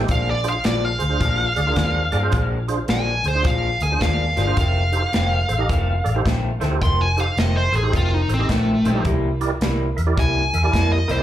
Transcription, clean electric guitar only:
0.08 0.32 A#2 medium
0.08 0.32 F3 medium
0.08 0.32 G#3 medium
0.08 0.33 D4 medium
0.64 0.88 A#2 medium
0.64 0.88 F3 medium
0.64 0.88 G#3 medium
0.64 0.88 D4 medium
1.20 1.44 A#2 medium
1.20 1.44 F3 medium
1.20 1.44 G#3 medium
1.20 1.45 D4 medium
1.67 muted clean electric guitar stroke soft
1.76 2.00 A#2 medium
1.76 2.00 F3 medium
1.76 2.00 G#3 medium
1.76 2.00 D4 medium
2.12 2.26 A#2 medium
2.12 2.26 F3 medium
2.12 2.26 G#3 medium
2.12 2.26 D4 medium
2.33 2.56 A#2 medium
2.33 2.56 F3 medium
2.33 2.57 G#3 medium
2.33 2.57 D4 medium
2.89 3.12 A#2 medium
2.89 3.12 F3 loud
2.89 3.12 G#3 loud
2.89 3.12 D4 medium
3.43 3.67 A#2 medium
3.43 3.68 F3 medium
3.43 3.68 G#3 medium
3.43 3.68 D4 loud
3.90 muted clean electric guitar stroke medium
4.00 4.24 A#2 medium
4.00 4.24 F3 medium
4.00 4.24 G#3 medium
4.00 4.24 D4 medium
4.37 4.50 A#2 medium
4.37 4.50 F3 medium
4.37 4.50 G#3 medium
4.37 4.50 D4 medium
4.57 4.80 F2 medium
4.57 4.81 D#3 medium
4.57 4.81 A3 medium
4.57 4.81 C4 medium
5.12 5.36 F2 medium
5.12 5.37 D#3 medium
5.12 5.37 A3 loud
5.12 5.37 C4 loud
5.69 5.93 F2 medium
5.69 5.93 D#3 medium
5.69 5.93 A3 medium
5.69 5.93 C4 medium
6.15 muted clean electric guitar stroke medium
6.25 6.48 F2 medium
6.25 6.49 D#3 loud
6.25 6.49 A3 loud
6.25 6.49 C4 loud
6.60 6.74 F2 medium
6.60 6.74 D#3 medium
6.60 6.74 A3 medium
6.60 6.74 C4 medium
6.82 7.05 F2 medium
6.82 7.05 D#3 medium
6.82 7.05 A3 medium
6.82 7.05 C4 medium
7.38 7.61 F2 medium
7.38 7.61 D#3 medium
7.38 7.61 A3 medium
7.38 7.61 C4 medium
7.92 8.16 F2 medium
7.92 8.16 D#3 medium
7.92 8.16 A3 medium
7.92 8.17 C4 medium
8.39 muted clean electric guitar stroke soft
8.50 8.73 F2 medium
8.50 8.73 D#3 loud
8.50 8.73 A3 medium
8.50 8.73 C4 medium
8.85 8.98 F2 medium
8.85 8.98 D#3 medium
8.85 8.99 A3 medium
8.85 8.99 C4 medium
9.05 9.28 C3 medium
9.05 9.29 G3 medium
9.05 9.29 A#3 medium
9.05 9.29 E4 medium
9.62 9.85 C3 medium
9.62 9.85 G3 medium
9.62 9.85 A#3 loud
9.62 9.85 E4 medium
10.17 10.40 C3 medium
10.17 10.40 G3 medium
10.17 10.41 A#3 medium
10.17 10.41 E4 medium
10.63 muted clean electric guitar stroke soft
10.73 10.96 C3 medium
10.73 10.96 G3 loud
10.73 10.97 A#3 loud
10.73 10.97 E4 loud
11.08 11.21 C3 medium
11.08 11.22 G3 medium
11.08 11.22 A#3 medium
11.08 11.22 E4 medium

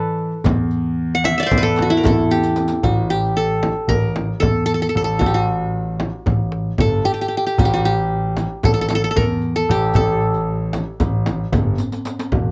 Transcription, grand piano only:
0.00 0.31 E3 medium
0.45 1.32 E2 loud
1.51 1.94 E2 medium
2.03 2.68 E2 medium
2.83 3.69 A1 medium
3.88 4.31 A1 medium
4.41 4.85 E2 medium
4.95 5.17 A1 medium
5.21 6.07 A1 medium
6.27 6.70 A1 medium
6.79 7.01 G1 medium
7.58 8.44 A1 loud
8.64 9.07 A1 medium
9.16 9.59 E2 medium
9.69 9.91 A1 loud
9.94 10.81 A1 loud
11.00 11.43 A1 medium
11.52 11.74 G1 medium
12.32 12.51 E1 medium

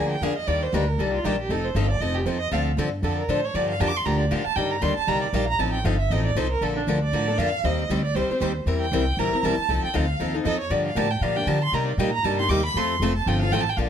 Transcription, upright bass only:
0.00 0.20 D2 medium
0.21 0.46 F2 medium
0.47 0.72 D#2 medium
0.73 0.98 D2 medium
0.98 1.23 C2 medium
1.24 1.49 A#1 medium
1.49 1.74 F1 medium
1.75 2.00 G1 medium
2.00 2.25 F1 medium
2.26 2.51 F2 medium
2.52 2.76 D2 medium
2.77 3.02 G2 medium
3.02 3.27 F2 medium
3.28 3.53 A2 medium
3.54 3.79 G2 medium
3.80 4.05 F2 medium
4.06 4.30 D2 medium
4.31 4.45 A2 medium
4.45 muted upright bass stroke soft
4.56 4.81 G2 medium
4.82 4.96 D#2 medium
4.97 muted upright bass stroke soft
5.07 5.32 C2 medium
5.33 5.58 A#1 medium
5.59 5.84 A1 medium
5.84 6.10 G1 medium
6.10 6.35 A1 medium
6.35 6.61 C2 medium
6.61 6.86 A#1 medium
6.87 7.12 D2 medium
7.13 7.37 A2 medium
7.38 7.63 F2 medium
7.64 7.89 D#2 medium
7.89 8.14 D2 medium
8.15 8.29 C2 medium
8.29 muted upright bass stroke soft
8.41 8.65 D#2 medium
8.66 8.91 E2 medium
8.92 9.16 C2 medium
9.17 9.31 A#1 medium
9.32 muted upright bass stroke soft
9.43 9.57 B1 medium
9.57 muted upright bass stroke soft
9.69 9.82 C2 medium
9.84 muted upright bass stroke soft
9.95 10.19 D2 medium
10.20 10.44 D#2 medium
10.45 10.69 F2 medium
10.70 10.95 G2 medium
10.95 11.20 A2 medium
11.21 11.46 A#2 medium
11.46 11.71 D3 medium
11.72 11.97 C3 medium
11.98 12.23 A#2 medium
12.23 12.48 G2 medium
12.49 12.74 D#2 medium
12.74 12.99 F2 medium
13.00 13.25 F1 medium
13.26 13.51 G1 medium
13.52 13.76 A1 medium
13.77 13.89 A#1 medium

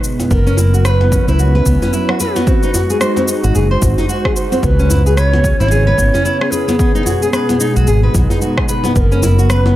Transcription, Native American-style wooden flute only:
0.32 0.87 A#4 loud
0.86 0.91 C5 medium
0.90 1.28 B4 loud
1.28 1.34 C5 medium
1.33 2.16 B4 loud
2.20 4.32 F#4 medium
4.63 5.19 B4 loud
5.17 5.59 C#5 loud
5.60 6.52 C#5 loud
6.51 8.68 G#4 medium
8.96 9.01 B4 medium
9.00 9.52 A#4 medium
9.50 9.76 B4 loud

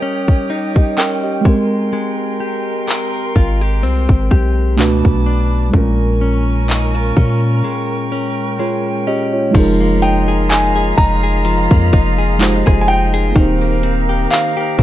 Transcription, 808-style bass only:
3.36 3.85 G#1 loud
3.84 4.08 C2 loud
4.09 4.30 G#1 loud
4.32 4.80 B1 loud
4.79 5.03 C#2 loud
5.05 5.71 B1 medium
5.74 7.13 A#1 loud
7.17 7.63 A#2 loud
9.55 10.94 F1 loud
10.98 11.68 F1 loud
11.71 11.92 F2 loud
11.94 12.64 F1 loud
12.67 13.33 F1 medium
13.36 14.27 D#1 loud
14.79 14.83 D#1 loud

